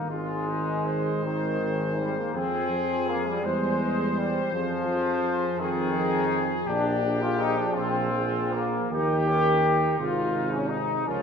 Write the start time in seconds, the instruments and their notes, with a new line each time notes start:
0.09 tuba G#1, trombone section G#3, trumpet section F4
0.47 trombone D#3, trumpet section D#4, french horn section G#4
0.85 trumpet section C5
1.22 tuba G#1, trombone section D#3
1.60 trombone D#3
1.98 trombone section G3
2.18 trombone section A#3
2.34 tuba F2, trombone F3, trombone section C4, trumpet section G#4, french horn section G#4
2.71 trombone F3, french horn section G#4
3.07 trombone section A#3
3.27 trombone section G3
3.43 tuba E2, trombone G3, trombone section G#3, french horn section C5, trumpet section C5
3.79 trombone G3
4.17 trombone section G3
4.52 tuba F2, trombone F3, trombone section F3, french horn section G#4
4.88 trombone F3, french horn section G#4
5.59 tuba F2, trombone section D#3, trumpet section G#4
5.94 trombone F3, french horn section G#4
6.66 tuba A#1, trombone section D4, trumpet section G4
7.02 trombone F3, french horn section G#4
7.22 trombone section F4
7.39 trombone section D#4
7.58 trombone section D4
7.73 tuba A#1, trombone section C4, trumpet section F4
8.12 trombone F3, french horn section G#4
8.52 trombone section A#3
8.91 tuba D#2, trombone D#3, trumpet section D#4, trombone section G4, french horn section A#4
9.28 trombone D#3, trumpet section C#4, french horn section A#4
9.65 trumpet section D#4
9.98 tuba G#1, trombone C3, trombone section F4, french horn section G#4
10.32 trombone C3, french horn section G#4
10.52 trombone section C#4
10.69 trombone section D#4
11.07 tuba C#2, trombone F3, trombone section C#4, trumpet section F4, french horn section A#4